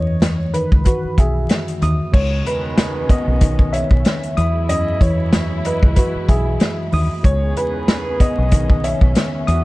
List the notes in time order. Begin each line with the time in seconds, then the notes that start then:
Already playing: E2 F#2 E3 C#5 D#6
0.22 snare, closed hi-hat
0.54 D#3 B4, closed hi-hat
0.72 C#2, kick
0.85 F#4 B4, kick, closed hi-hat
1.04 muted fingered electric bass stroke
1.18 B1 G#4 E5, kick, closed hi-hat
1.49 snare, closed hi-hat
1.68 closed hi-hat
1.82 D#2 D#6, closed hi-hat
2.12 C#2 B2 C#3 D#3 G#3 B3 C#4 C#5, kick, crash
2.44 E2 B4, closed hi-hat
2.78 snare, closed hi-hat
3.09 B3 D#5, kick, closed hi-hat
3.28 B1
3.41 D#3, kick, closed hi-hat
3.59 kick
3.73 C#5 E5, closed hi-hat
3.91 B1, kick
4.05 snare, closed hi-hat
4.23 closed hi-hat
4.37 E2 B2 E3 F#3 G#3 E4 D#6, closed hi-hat
4.69 F#2 D#5, closed hi-hat
5.01 E2 E3 C#5, kick, closed hi-hat
5.33 snare, closed hi-hat
5.65 B4 D#5, closed hi-hat
5.83 C#2, kick
5.96 F#4 B4, kick, closed hi-hat
6.15 muted fingered electric bass stroke
6.29 B1 G#4 E5, kick, closed hi-hat
6.60 snare, closed hi-hat
6.92 D#2 D#6, open hi-hat
7.23 C#2 B2 C#3 D#3 E3 G#3 B3 C#4 G#4 C#5, kick, closed hi-hat
7.55 E2 B4, closed hi-hat
7.88 snare, closed hi-hat
8.20 B3 D#5, kick, closed hi-hat
8.38 B1
8.52 D#3, kick, closed hi-hat
8.70 kick
8.84 C#5 E5, closed hi-hat
9.01 B1, kick
9.15 snare, closed hi-hat
9.47 E2 D#3 F#3 G#3 B3 F#4 D#6, closed hi-hat